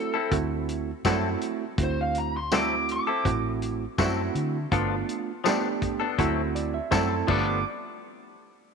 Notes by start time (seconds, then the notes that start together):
Already playing: A3 C4 E4 F#4 A4
0.14 C4 E4 A4
0.32 D2 A3 C4 E4 F#4, kick, closed hi-hat
0.69 closed hi-hat
1.05 F#2 F#3 A3 C4 E4 F#4 A4, kick, snare, closed hi-hat, tambourine
1.41 closed hi-hat
1.78 D2 A3 C4 E4 F#4, kick, closed hi-hat
1.83 C5
2.01 F5
2.15 A#5, closed hi-hat
2.37 C6
2.52 F#3 A3 C4 E4 F#4 A4 D6, snare, closed hi-hat, tambourine
2.89 D6, closed hi-hat
3.07 C4 E4 A4
3.25 A1 A3 C4 E4 F#4, kick, closed hi-hat
3.62 closed hi-hat
3.98 F#2 F#3 A3 C4 E4 F#4 A4, kick, snare, closed hi-hat, tambourine
4.35 D3, closed hi-hat
4.72 G1 F3 A3 B3 D4 F4 A4, kick, closed hi-hat
5.09 closed hi-hat
5.44 F3 A3 B3 D4 G4 A4, snare, closed hi-hat, tambourine
5.82 kick, closed hi-hat
6.00 B3 D4 A4
6.18 D2 F#3 A3 C4 E4 F#4 A4, kick, closed hi-hat
6.55 D5, closed hi-hat
6.74 E5
6.91 F#2 F#3 A3 C4 E4 A4 F#5, kick, snare, closed hi-hat, tambourine
7.10 A5
7.27 G1 F3 G3 A3 B3 D4 F4 A4 D6, kick, crash